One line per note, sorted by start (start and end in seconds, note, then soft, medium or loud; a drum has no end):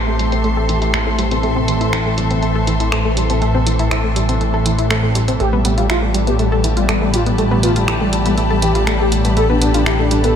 0.00 5.38 A1 medium
0.00 10.36 A2 medium
0.00 5.36 E3 medium
0.00 10.36 E3 medium
0.00 5.36 A3 medium
0.00 5.36 C4 medium
0.00 1.39 G4 medium
0.00 7.05 A4 medium
0.00 6.93 E5 medium
0.00 5.40 C6 medium
0.07 0.19 A3 medium
0.19 0.28 G3 medium
0.19 closed hi-hat medium
0.32 0.44 C4 medium
0.32 closed hi-hat soft
0.44 0.53 A3 medium
0.44 closed hi-hat soft
0.57 0.65 A4 loud
0.69 0.78 E3 medium
0.69 closed hi-hat medium
0.82 0.87 E4 medium
0.82 closed hi-hat soft
0.94 1.03 A3 loud
0.94 finger snap loud
0.94 closed hi-hat soft
1.07 1.18 A3 medium
1.19 1.27 G3 medium
1.19 closed hi-hat medium
1.31 1.43 C4 medium
1.31 closed hi-hat soft
1.43 1.52 A3 loud
1.43 5.36 A4 medium
1.43 closed hi-hat soft
1.56 1.64 C4 loud
1.68 1.77 E3 medium
1.68 closed hi-hat medium
1.81 1.86 E4 medium
1.81 closed hi-hat soft
1.93 2.02 E4 medium
1.93 finger snap loud
1.93 closed hi-hat soft
2.06 2.17 A3 medium
2.18 2.27 G3 medium
2.18 closed hi-hat medium
2.31 2.42 C4 medium
2.31 closed hi-hat soft
2.43 2.51 A3 medium
2.43 closed hi-hat soft
2.55 2.64 A4 loud
2.67 2.76 E3 medium
2.67 closed hi-hat medium
2.80 2.85 E4 medium
2.80 closed hi-hat soft
2.92 3.01 A3 loud
2.92 finger snap loud
2.92 closed hi-hat soft
3.05 3.16 A3 medium
3.17 3.26 G3 medium
3.17 closed hi-hat medium
3.30 3.41 C4 medium
3.30 closed hi-hat soft
3.42 3.51 A3 loud
3.42 closed hi-hat soft
3.55 3.63 C4 loud
3.67 3.75 E3 medium
3.67 closed hi-hat medium
3.79 3.84 E4 medium
3.79 closed hi-hat soft
3.91 4.00 E4 medium
3.91 finger snap loud
3.91 closed hi-hat soft
4.04 4.15 A3 medium
4.16 4.25 G3 medium
4.16 closed hi-hat medium
4.29 4.40 C4 medium
4.29 closed hi-hat soft
4.41 4.50 A3 medium
4.41 closed hi-hat soft
4.54 4.62 A4 loud
4.66 4.74 E3 medium
4.66 closed hi-hat medium
4.79 4.83 E4 medium
4.79 closed hi-hat soft
4.91 4.99 A3 loud
4.91 finger snap loud
4.91 closed hi-hat soft
5.03 5.15 A3 medium
5.15 5.24 G3 medium
5.15 closed hi-hat medium
5.28 5.39 C4 medium
5.28 closed hi-hat soft
5.40 10.36 A1 medium
5.40 10.36 D3 medium
5.40 5.49 A3 loud
5.40 10.36 A3 medium
5.40 10.36 B3 medium
5.40 10.36 G4 medium
5.40 5.48 G4 medium
5.40 10.36 G4 medium
5.40 closed hi-hat soft
5.53 5.61 G3 medium
5.53 5.61 B3 loud
5.65 5.73 G3 medium
5.65 5.74 B3 medium
5.65 closed hi-hat medium
5.75 5.86 G3 medium
5.75 5.83 F4 medium
5.75 10.36 D5 medium
5.75 closed hi-hat soft
5.90 5.98 E4 medium
5.90 5.98 F4 medium
5.90 finger snap loud
5.90 closed hi-hat soft
6.00 6.10 G3 medium
6.00 6.14 A3 medium
6.00 10.36 A5 medium
6.14 6.23 G3 medium
6.14 closed hi-hat medium
6.27 6.39 B3 medium
6.27 6.35 G4 medium
6.27 closed hi-hat soft
6.39 6.48 G3 medium
6.39 6.48 A3 medium
6.39 closed hi-hat soft
6.52 6.60 G3 medium
6.52 6.60 A4 loud
6.64 6.73 E3 medium
6.64 closed hi-hat medium
6.77 6.85 G3 medium
6.77 6.82 F4 medium
6.77 closed hi-hat soft
6.89 6.97 G3 medium
6.89 6.98 A3 loud
6.89 finger snap medium
6.89 closed hi-hat soft
6.96 10.36 B5 medium
7.02 7.10 G3 medium
7.02 7.13 A3 medium
7.14 7.22 G3 medium
7.14 7.22 F4 medium
7.14 closed hi-hat medium
7.26 7.34 G3 medium
7.26 7.38 B3 medium
7.26 closed hi-hat soft
7.38 7.47 G3 medium
7.38 7.47 A3 loud
7.38 closed hi-hat soft
7.51 7.59 G3 medium
7.51 7.59 B3 loud
7.63 7.72 B3 medium
7.63 7.72 F4 medium
7.63 closed hi-hat medium
7.76 7.84 G3 medium
7.76 7.81 F4 medium
7.76 closed hi-hat soft
7.88 7.97 E4 medium
7.88 7.96 G4 medium
7.88 finger snap medium
7.88 closed hi-hat soft
8.01 8.09 G3 medium
8.01 8.12 A3 medium
8.13 8.22 G3 medium
8.13 closed hi-hat medium
8.26 8.33 G3 medium
8.26 8.37 B3 medium
8.26 closed hi-hat soft
8.38 8.46 A3 medium
8.38 closed hi-hat soft
8.50 8.58 G3 medium
8.50 8.59 A4 loud
8.62 8.71 E3 medium
8.62 8.71 G4 medium
8.62 closed hi-hat medium
8.75 8.83 G3 medium
8.75 8.80 F4 medium
8.75 closed hi-hat soft
8.87 8.96 G3 medium
8.87 8.96 A3 loud
8.87 finger snap medium
8.87 closed hi-hat soft
9.00 9.11 A3 medium
9.00 9.08 G4 medium
9.12 9.21 G3 medium
9.12 9.20 G3 medium
9.12 closed hi-hat medium
9.25 9.33 G3 medium
9.25 9.36 B3 medium
9.25 closed hi-hat soft
9.37 9.46 A3 loud
9.37 9.45 A4 loud
9.37 closed hi-hat soft
9.50 9.58 B3 loud
9.50 9.57 D4 medium
9.62 9.70 B3 medium
9.62 9.70 D4 medium
9.62 closed hi-hat medium
9.74 9.82 D4 medium
9.74 9.79 F4 medium
9.74 closed hi-hat soft
9.86 9.95 E4 medium
9.86 9.95 G4 medium
9.86 finger snap loud
9.86 closed hi-hat soft
9.99 10.11 A3 medium
9.99 10.07 D4 medium
10.11 10.20 G3 medium
10.11 10.20 D4 medium
10.11 closed hi-hat medium
10.24 10.35 B3 medium
10.24 10.32 A4 medium
10.24 closed hi-hat soft